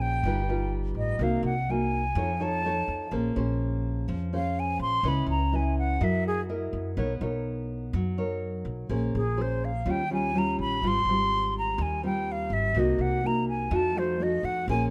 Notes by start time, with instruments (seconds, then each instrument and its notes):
Already playing: upright bass A#1, nylon-string guitar A#3 C#4 G#4 C5
0.02 flute G5
0.23 upright bass G1, nylon-string guitar G3 D#4 F4 B4
0.49 nylon-string guitar D#4 F4 B4
0.94 upright bass A1, flute D#5
1.19 upright bass C2, nylon-string guitar C3 A#3 D#4 F#4
1.23 flute F5
1.43 upright bass C2, flute F#5
1.69 nylon-string guitar A#3 D#4 F#4, flute G#5
2.15 upright bass F2, nylon-string guitar F3 D#4 A4 C#5
2.40 nylon-string guitar D#4 A4 C#5, flute A5
2.65 nylon-string guitar D#4 A4 C#5
2.88 upright bass F2
3.11 upright bass A#1, nylon-string guitar A#3 C#4 G#4 C5
3.36 upright bass A#1, nylon-string guitar C#4 G#4 C5
4.08 upright bass F2, nylon-string guitar F3
4.33 nylon-string guitar C#4 G#4 C5, flute F5
4.60 flute G#5
4.79 upright bass A#1, flute C6
5.03 upright bass C#2, nylon-string guitar C#4 E4 B4 D#5
5.08 flute B5
5.26 upright bass C#2, flute A#5
5.52 nylon-string guitar E4 B4 D#5, flute G#5
5.79 flute F#5
6.01 upright bass F#2, nylon-string guitar F#3 E4 A#4 D#5, flute E5
6.27 flute G#4
6.49 nylon-string guitar E4 A#4 D#5
6.73 upright bass F#2
6.97 upright bass B1, nylon-string guitar B3 D#4 A#4 C#5
7.21 upright bass B1, nylon-string guitar D#4 A#4 C#5
7.93 upright bass F#2, nylon-string guitar F#3
8.17 nylon-string guitar D#4 A#4 C#5
8.65 upright bass B1
8.89 upright bass A#1, nylon-string guitar A#3 C#4 G#4 C5
9.15 upright bass A#1, flute G#4
9.37 nylon-string guitar C#4 G#4 C5
9.42 flute C5
9.65 flute F5
9.85 upright bass D#2, nylon-string guitar D#3 G3 C#4 F4
9.91 flute G5
10.10 nylon-string guitar G3 C#4 F4, flute G#5
10.35 nylon-string guitar G3 C#4 F4, flute A#5
10.59 upright bass A#1, flute B5
10.82 upright bass G#1, nylon-string guitar G#2 G3 C4 F4
10.87 flute C6
11.05 upright bass G#1, nylon-string guitar G3 C4
11.10 nylon-string guitar F4
11.58 flute A#5
11.78 upright bass D#2, nylon-string guitar D#3, flute G#5
12.03 nylon-string guitar G3 C4 F4, flute G5
12.32 flute F5
12.50 upright bass G#1, flute E5
12.74 upright bass C2, nylon-string guitar C3 A#3 D#4 F#4
12.79 flute D#5
12.98 upright bass C2, flute F#5
13.24 nylon-string guitar A#3 D#4 F#4, flute A#5
13.49 flute G#5
13.71 upright bass F2, nylon-string guitar F3 A3 D#4 F#4
13.76 flute A5
13.96 nylon-string guitar A3 D#4 F#4, flute C5
14.19 nylon-string guitar A3 D#4 F#4, flute D#5
14.43 upright bass F2, flute F#5
14.68 upright bass A#1, nylon-string guitar A#3 C#4 G#4 C5, flute G#5